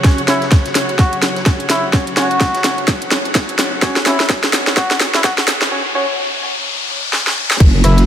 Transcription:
0.00 5.67 C#3 medium
0.00 5.67 F#3 medium
0.00 5.67 F#4 medium
0.00 5.71 F#4 medium
0.00 5.68 C#5 medium
0.00 5.71 C#5 medium
0.00 5.71 F#5 medium
0.04 0.21 C#4 medium
0.04 0.21 F#4 medium
0.04 0.21 C#5 loud
0.04 kick loud
0.04 snare medium
0.04 closed hi-hat medium
0.04 ride medium
0.04 riser medium
0.18 closed hi-hat medium
0.27 0.39 C#4 medium
0.27 0.47 E4 medium
0.27 0.39 F#4 medium
0.27 0.39 C#5 loud
0.27 snare medium
0.27 open hi-hat loud
0.27 ride medium
0.42 snare medium
0.42 closed hi-hat soft
0.51 kick loud
0.51 snare loud
0.51 snare medium
0.51 closed hi-hat medium
0.51 ride loud
0.66 snare soft
0.66 closed hi-hat medium
0.75 snare medium
0.75 open hi-hat loud
0.75 ride medium
0.89 closed hi-hat soft
0.99 1.18 F#4 medium
0.99 kick loud
0.99 snare medium
0.99 closed hi-hat medium
0.99 ride medium
1.13 closed hi-hat medium
1.22 snare medium
1.22 open hi-hat loud
1.22 ride medium
1.36 snare medium
1.36 closed hi-hat soft
1.46 kick loud
1.46 snare loud
1.46 snare medium
1.46 closed hi-hat medium
1.46 ride medium
1.60 closed hi-hat soft
1.69 1.89 E4 medium
1.69 snare medium
1.69 open hi-hat loud
1.69 ride medium
1.93 2.05 C#4 medium
1.93 2.05 F#4 medium
1.93 2.05 C#5 medium
1.93 kick loud
1.93 snare medium
1.93 closed hi-hat medium
1.93 ride medium
2.07 closed hi-hat medium
2.17 2.28 C#4 medium
2.17 2.28 F#4 medium
2.17 2.84 F#4 loud
2.17 2.28 C#5 loud
2.17 snare medium
2.17 open hi-hat loud
2.17 ride medium
2.31 closed hi-hat soft
2.40 kick loud
2.40 snare loud
2.40 snare medium
2.40 closed hi-hat medium
2.40 ride medium
2.55 snare medium
2.55 closed hi-hat medium
2.64 snare medium
2.64 open hi-hat loud
2.64 ride medium
2.78 closed hi-hat soft
2.88 kick loud
2.88 snare medium
2.88 closed hi-hat medium
2.88 ride medium
3.02 closed hi-hat medium
3.11 snare medium
3.11 open hi-hat loud
3.11 ride medium
3.25 closed hi-hat soft
3.34 kick loud
3.34 snare medium
3.34 snare loud
3.34 closed hi-hat medium
3.34 ride medium
3.49 closed hi-hat medium
3.59 snare medium
3.59 open hi-hat loud
3.59 ride medium
3.82 3.99 C#4 loud
3.82 3.99 F#4 medium
3.82 3.99 C#5 loud
3.82 kick loud
3.82 snare medium
3.82 closed hi-hat medium
3.82 ride medium
3.96 snare medium
3.96 closed hi-hat medium
4.06 4.17 C#4 medium
4.06 4.25 E4 medium
4.06 4.17 F#4 medium
4.06 4.17 C#5 loud
4.06 snare loud
4.06 open hi-hat loud
4.06 ride medium
4.20 snare medium
4.20 closed hi-hat soft
4.29 kick loud
4.29 snare loud
4.29 snare medium
4.29 closed hi-hat medium
4.29 ride medium
4.44 snare medium
4.44 closed hi-hat medium
4.53 snare loud
4.53 open hi-hat loud
4.53 ride medium
4.67 snare medium
4.67 closed hi-hat soft
4.77 4.96 F#4 medium
4.77 kick loud
4.77 snare loud
4.77 closed hi-hat medium
4.77 ride medium
4.91 snare medium
4.91 closed hi-hat medium
5.00 snare loud
5.00 open hi-hat loud
5.00 ride medium
5.14 5.22 E4 loud
5.14 snare medium
5.14 closed hi-hat soft
5.24 5.33 F#4 medium
5.24 kick loud
5.24 snare loud
5.24 closed hi-hat medium
5.24 ride medium
5.38 5.44 F#4 medium
5.38 snare medium
5.38 closed hi-hat medium
5.48 snare loud
5.48 open hi-hat loud
5.48 ride medium
5.62 snare medium
5.71 5.83 C#4 medium
5.71 5.83 F#4 medium
5.71 5.83 C#5 medium
5.95 6.06 C#4 loud
5.95 6.06 F#4 medium
5.95 6.06 C#5 loud
7.13 snare medium
7.27 snare medium
7.51 snare medium
7.60 7.82 F#1 loud
7.60 8.06 F#3 medium
7.60 8.06 C#4 medium
7.60 8.06 F#4 loud
7.60 kick loud
7.60 closed hi-hat medium
7.60 crash loud
7.60 ride medium
7.60 downlifter medium
7.84 8.06 F#1 loud
7.84 8.03 E4 loud
7.84 cross-stick medium
7.84 open hi-hat loud
7.84 ride medium
7.98 snare medium
7.98 closed hi-hat medium

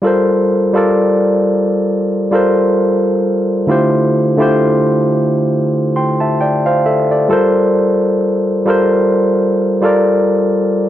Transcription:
0.02 0.68 G3 medium
0.02 0.69 F4 medium
0.02 0.70 A4 medium
0.02 0.70 A#4 medium
0.07 0.71 C5 medium
0.73 2.21 G3 medium
0.73 2.21 F4 medium
0.73 2.22 A4 medium
0.73 2.22 A#4 medium
0.78 2.23 D5 medium
2.31 3.59 G3 medium
2.31 3.60 F4 medium
2.31 3.60 A4 medium
2.31 3.61 A#4 medium
2.35 3.61 C5 medium
3.67 4.33 D3 medium
3.67 4.33 A3 medium
3.67 4.34 E4 medium
3.67 4.34 F4 medium
3.67 4.34 G4 medium
3.71 4.35 C5 medium
4.37 5.85 D3 medium
4.37 5.85 A3 medium
4.37 5.85 E4 medium
4.37 5.86 F4 medium
4.37 5.86 G4 medium
4.42 5.87 C5 medium
5.96 6.20 G5 soft
5.96 6.20 C6 soft
6.20 6.40 E5 soft
6.20 6.39 A5 medium
6.41 6.65 D5 soft
6.41 6.65 G5 medium
6.66 6.85 C5 medium
6.66 6.85 F5 medium
6.86 7.10 A4 soft
6.86 7.10 E5 medium
7.11 7.29 A4 soft
7.11 7.54 D5 medium
7.29 8.58 G3 medium
7.29 8.58 F4 medium
7.29 8.59 A4 medium
7.29 8.60 A#4 medium
7.33 8.60 C5 medium
8.65 9.74 G3 medium
8.65 9.75 F4 medium
8.65 9.75 A4 medium
8.65 9.76 A#4 medium
8.70 9.76 C5 medium
9.81 10.87 G3 medium
9.81 10.87 F4 medium
9.81 10.88 A4 medium
9.81 10.88 A#4 medium
9.86 10.89 D5 medium

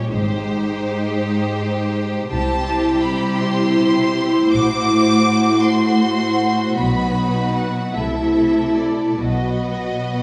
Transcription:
0.00 0.11 G3 medium
0.00 0.10 G4 soft
0.00 0.11 C#5 medium
0.10 0.79 G#1 soft
0.10 2.31 G#2 medium
0.10 2.27 G#3 medium
0.10 2.31 D#4 medium
0.10 2.27 G4 medium
0.10 1.91 C5 medium
0.10 2.27 C5 medium
2.30 3.00 C2 medium
2.30 4.48 C3 medium
2.30 4.49 G3 medium
2.30 6.74 E4 medium
2.30 4.49 G4 medium
2.30 6.74 C5 medium
2.30 3.00 A5 medium
3.03 3.40 B5 medium
3.39 4.51 C6 medium
4.50 5.23 A1 soft
4.50 6.73 A2 medium
4.50 6.74 A3 medium
4.50 7.91 F#4 medium
4.50 5.61 D6 loud
5.63 6.77 C6 medium
6.76 7.51 B1 soft
6.76 7.92 B2 soft
6.76 7.93 F#3 soft
6.76 7.95 D#4 soft
6.76 7.95 B4 medium
6.76 7.53 B5 medium
7.54 7.94 F#5 medium
7.94 8.73 C2 soft
7.94 9.20 C3 soft
7.94 9.20 A3 soft
7.94 9.18 E4 soft
7.94 9.20 A4 soft
7.94 8.77 E5 medium
8.77 9.20 D5 soft
9.19 10.02 B1 soft
9.19 10.23 B2 soft
9.19 10.23 F#3 soft
9.19 10.23 B3 soft
9.19 10.23 F#4 soft
9.19 10.23 B4 soft
9.19 10.23 D#5 medium

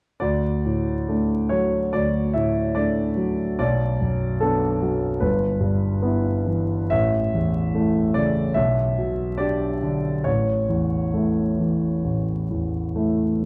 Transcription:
0.20 1.90 D2 soft
0.20 1.51 D5 medium
0.65 1.35 A2 soft
1.08 1.48 A3 soft
1.08 1.48 D4 soft
1.49 2.19 F#3 soft
1.49 1.93 C#5 medium
1.93 3.56 D2 soft
1.93 2.35 D5 medium
2.33 3.01 A2 soft
2.33 2.75 E5 medium
2.75 3.14 A3 soft
2.75 3.14 D4 soft
2.75 3.57 D5 medium
3.17 3.59 F#3 soft
3.59 5.20 B1 medium
3.59 4.43 D5 medium
4.01 4.68 F#2 soft
4.40 4.79 B3 soft
4.40 4.80 D4 soft
4.40 5.22 A4 medium
4.82 5.23 F#3 soft
5.20 6.88 G1 soft
5.20 6.92 B4 medium
5.60 6.29 G2 soft
6.02 6.44 B3 soft
6.02 6.44 E4 soft
6.46 6.92 E3 soft
6.90 8.51 A1 medium
6.90 8.14 E5 medium
7.35 7.99 E2 soft
7.74 8.11 A3 soft
7.74 8.12 E4 soft
8.14 8.57 C#3 soft
8.14 8.56 D5 medium
8.54 10.22 B1 soft
8.54 9.39 E5 medium
8.98 9.66 B2 soft
9.38 9.78 D4 soft
9.38 9.78 G4 soft
9.38 10.25 D5 medium
9.83 10.26 D3 soft
10.24 12.02 A1 soft
10.24 12.97 C#5 medium
10.69 11.42 E2 soft
11.14 11.56 A3 soft
11.14 11.56 E4 soft
11.59 12.33 E3 soft
12.04 13.45 A1 soft
12.51 13.25 E2 soft
12.95 13.39 A3 soft
12.95 13.39 E4 soft

